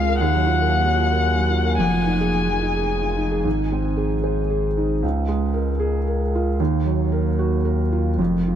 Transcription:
0.00 0.18 C#2 medium
0.00 0.23 C#2 medium
0.00 0.24 G#3 soft
0.00 1.80 A#3 medium
0.00 0.24 F4 soft
0.00 0.21 G#4 soft
0.00 0.09 A#4 soft
0.00 0.19 F5 medium
0.00 1.80 G#5 medium
0.09 0.22 A#4 medium
0.20 1.75 D#2 medium
0.20 1.80 D#2 medium
0.20 1.76 F#5 medium
0.34 0.55 F#3 medium
0.46 0.68 F4 medium
0.61 1.02 A#4 soft
0.86 1.07 F#3 soft
0.97 1.19 F4 medium
1.12 1.55 A#4 soft
1.37 1.60 F#3 soft
1.51 1.73 F4 soft
1.65 1.79 A#4 soft
1.78 3.44 F1 medium
1.78 3.40 F2 soft
1.78 3.21 G#5 soft
1.93 2.15 F3 soft
2.06 2.29 D#4 soft
2.20 2.65 G#4 soft
2.49 2.71 F3 soft
2.62 2.84 D#4 soft
2.76 3.20 G#4 soft
3.03 3.25 F3 soft
3.17 3.39 D#4 soft
3.31 3.45 G#4 soft
3.44 5.04 G#1 medium
3.44 4.99 G#2 soft
3.72 4.14 C4 soft
3.97 4.40 G#4 soft
4.23 4.66 C5 soft
4.50 4.92 G#4 soft
4.77 5.03 D#4 soft
5.02 6.55 C#2 soft
5.02 6.60 C#2 medium
5.28 5.70 G#3 soft
5.54 5.96 A#4 soft
5.79 6.22 G#4 soft
6.07 6.49 A#4 soft
6.35 6.60 F4 soft
6.59 8.19 D#2 medium
6.59 8.15 D#2 medium
6.85 7.27 F#3 soft
7.12 7.54 A#4 soft
7.39 7.81 F#4 soft
7.65 8.08 A#4 soft
7.92 8.19 F4 soft
8.17 8.55 F1 medium
8.17 8.55 F2 soft
8.47 8.55 F3 soft

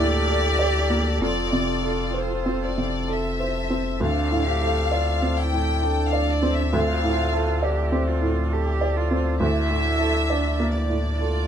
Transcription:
0.00 1.17 D2 medium
0.00 1.22 D2 medium
0.00 1.23 A2 medium
0.00 0.16 A#3 soft
0.00 1.21 D4 medium
0.00 1.22 G4 medium
0.00 0.28 A4 medium
0.00 4.00 A4 medium
0.00 0.59 D5 medium
0.00 1.17 D5 medium
0.00 1.20 D5 medium
0.28 0.77 A4 medium
0.59 1.08 D5 soft
0.90 1.21 A#3 soft
1.21 4.02 F1 medium
1.21 3.97 F2 medium
1.21 4.01 C4 soft
1.21 3.55 F4 medium
1.21 4.01 C5 soft
1.21 2.13 D5 medium
1.52 2.02 C3 soft
1.83 2.33 A4 soft
2.14 2.64 C5 soft
2.14 2.61 C5 medium
2.46 2.95 C4 soft
2.63 3.09 D5 medium
2.77 3.27 C3 soft
3.08 3.58 A4 soft
3.08 4.01 E5 medium
3.40 3.89 C5 soft
3.70 4.01 C4 soft
4.00 6.68 D2 medium
4.00 9.40 D2 medium
4.00 9.37 C4 soft
4.00 4.49 D4 medium
4.00 9.37 A4 soft
4.00 9.41 D5 soft
4.00 5.35 F5 medium
4.31 4.80 A2 soft
4.47 4.93 G4 medium
4.62 5.10 A4 soft
4.92 5.40 F4 soft
4.92 5.40 D5 soft
5.22 5.70 C4 soft
5.38 5.84 E4 medium
5.38 6.05 G5 medium
5.53 6.01 A2 soft
5.83 6.73 D4 medium
5.83 6.31 A4 soft
6.07 6.28 F5 medium
6.13 6.61 D5 soft
6.28 6.50 D5 medium
6.42 6.91 C4 soft
6.52 6.74 E5 medium
6.73 9.36 D2 medium
6.73 7.65 F4 medium
6.73 7.64 F5 medium
7.04 7.51 A2 soft
7.33 7.81 A4 medium
7.63 8.09 G4 medium
7.63 8.10 D5 soft
7.92 8.40 C4 soft
8.08 8.54 F4 medium
8.22 8.69 A2 soft
8.52 8.98 G4 medium
8.52 8.99 A4 soft
8.81 9.28 D5 soft
8.97 9.40 F4 medium
9.11 9.40 C4 soft
9.40 11.47 D2 medium
9.40 11.47 D4 soft
9.40 10.32 E4 medium
9.40 11.47 D5 medium
9.40 10.71 E5 medium
9.40 11.47 A5 soft
9.70 10.18 A2 soft
10.00 10.47 A4 soft
10.30 10.77 D4 medium
10.30 10.78 D5 soft
10.60 11.08 A#3 soft
10.75 11.22 E4 soft
10.75 11.47 D5 medium
10.89 11.38 A2 soft
11.21 11.47 F4 medium
11.21 11.47 A4 soft

